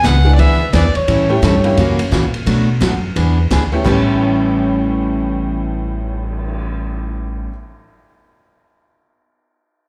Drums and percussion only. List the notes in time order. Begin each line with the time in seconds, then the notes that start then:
0.04 snare, hi-hat pedal, ride
0.39 ride
0.73 snare, hi-hat pedal, ride
0.95 ride
1.08 ride
1.43 snare, hi-hat pedal, ride
1.64 ride
1.77 ride
1.99 ride
2.12 snare, hi-hat pedal
2.34 ride
2.47 ride
2.82 snare, hi-hat pedal, ride
3.16 ride
3.51 snare, hi-hat pedal, ride
3.86 kick, crash
4.07 cymbal swell